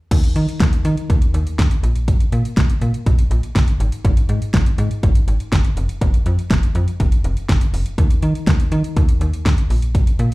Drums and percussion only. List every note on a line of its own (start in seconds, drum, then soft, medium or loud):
0.11 kick loud
0.11 closed hi-hat medium
0.11 crash medium
0.24 closed hi-hat medium
0.36 closed hi-hat medium
0.48 closed hi-hat soft
0.60 kick loud
0.60 snare loud
0.60 closed hi-hat medium
0.73 closed hi-hat medium
0.85 closed hi-hat medium
0.97 closed hi-hat soft
1.10 kick loud
1.10 closed hi-hat medium
1.22 closed hi-hat medium
1.34 closed hi-hat medium
1.47 closed hi-hat soft
1.59 kick loud
1.59 snare loud
1.59 closed hi-hat medium
1.71 closed hi-hat medium
1.84 closed hi-hat medium
1.96 closed hi-hat medium
2.08 kick loud
2.08 closed hi-hat medium
2.20 closed hi-hat medium
2.32 closed hi-hat medium
2.45 closed hi-hat soft
2.57 kick loud
2.57 snare loud
2.57 closed hi-hat medium
2.70 closed hi-hat medium
2.81 closed hi-hat medium
2.94 closed hi-hat soft
3.06 kick loud
3.06 closed hi-hat medium
3.19 closed hi-hat medium
3.31 closed hi-hat medium
3.43 closed hi-hat medium
3.55 kick loud
3.55 snare loud
3.55 closed hi-hat medium
3.68 closed hi-hat medium
3.80 closed hi-hat medium
3.92 closed hi-hat medium
4.05 kick loud
4.05 closed hi-hat medium
4.17 closed hi-hat medium
4.29 closed hi-hat medium
4.42 closed hi-hat soft
4.54 kick loud
4.54 snare loud
4.54 closed hi-hat medium
4.66 closed hi-hat medium
4.78 closed hi-hat medium
4.91 closed hi-hat soft
5.03 kick loud
5.03 closed hi-hat medium
5.15 closed hi-hat medium
5.28 closed hi-hat medium
5.40 closed hi-hat soft
5.52 kick loud
5.52 snare loud
5.52 closed hi-hat medium
5.65 closed hi-hat medium
5.77 closed hi-hat medium
5.89 closed hi-hat medium
6.01 kick loud
6.01 closed hi-hat medium
6.14 closed hi-hat medium
6.26 closed hi-hat medium
6.39 closed hi-hat soft
6.50 kick loud
6.50 snare loud
6.50 closed hi-hat medium
6.63 closed hi-hat medium
6.75 closed hi-hat medium
6.88 closed hi-hat soft
7.00 kick loud
7.00 closed hi-hat medium
7.12 closed hi-hat medium
7.24 closed hi-hat medium
7.37 closed hi-hat soft
7.49 kick loud
7.49 snare loud
7.49 closed hi-hat medium
7.61 closed hi-hat medium
7.74 open hi-hat medium
7.86 closed hi-hat medium
7.98 kick loud
7.98 closed hi-hat medium
8.11 closed hi-hat medium
8.22 closed hi-hat medium
8.35 closed hi-hat soft
8.47 kick loud
8.47 snare loud
8.47 closed hi-hat medium
8.60 closed hi-hat medium
8.72 closed hi-hat medium
8.84 closed hi-hat medium
8.96 kick loud
8.96 closed hi-hat medium
9.09 closed hi-hat medium
9.21 closed hi-hat medium
9.33 closed hi-hat soft
9.46 kick loud
9.46 snare loud
9.46 closed hi-hat medium
9.58 closed hi-hat medium
9.70 open hi-hat medium
9.82 closed hi-hat medium
9.95 kick loud
9.95 closed hi-hat medium
10.07 closed hi-hat medium
10.19 closed hi-hat medium